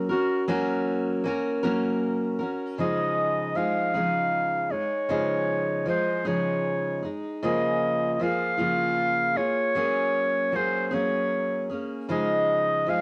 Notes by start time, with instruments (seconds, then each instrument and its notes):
Already playing: steel-string acoustic guitar F#3
0.09 steel-string acoustic guitar C#4 F#4 A#4, clarinet F#4
0.48 steel-string acoustic guitar F#3 A#3 C#4 F#4 A#4
1.24 steel-string acoustic guitar A#3 C#4 F#4 A#4
1.63 steel-string acoustic guitar F#3 A#3 C#4 F#4 A#4
2.39 steel-string acoustic guitar C#4 F#4 A#4
2.78 steel-string acoustic guitar C#3 F3 G#3 D#4 G#4, clarinet D#5
3.55 steel-string acoustic guitar F3 G#3 D#4 G#4, clarinet F5
3.94 steel-string acoustic guitar C#3 F3 G#3 D#4 G#4
4.70 steel-string acoustic guitar G#3 D#4 G#4, clarinet C#5
5.09 steel-string acoustic guitar C#3 F3 G#3 D#4 G#4
5.86 steel-string acoustic guitar F3 G#3 D#4 G#4
5.90 clarinet C5
6.25 steel-string acoustic guitar C#3 F3 G#3 D#4 G#4, clarinet C#5
7.02 steel-string acoustic guitar G#3 D#4 G#4
7.42 steel-string acoustic guitar C#3 F3 A#3 F4 G#4, clarinet D#5
8.14 clarinet D#5
8.19 steel-string acoustic guitar F3 A#3 F4 G#4, clarinet F5
8.58 steel-string acoustic guitar C#3 F3 A#3 F4 G#4
9.36 steel-string acoustic guitar A#3 F4 G#4, clarinet C#5
9.75 steel-string acoustic guitar F#3 A#3 C#4 G#4
10.52 steel-string acoustic guitar F#3 A#3 C#4 G#4, clarinet C5
10.88 steel-string acoustic guitar G#4, clarinet C5
10.92 steel-string acoustic guitar F#3 A#3 C#4, clarinet C#5
11.70 steel-string acoustic guitar A#3 C#4 G#4
12.09 steel-string acoustic guitar C#3 F3 G#3 D#4 G#4, clarinet D#5
12.86 steel-string acoustic guitar F3 G#3 D#4 G#4, clarinet F5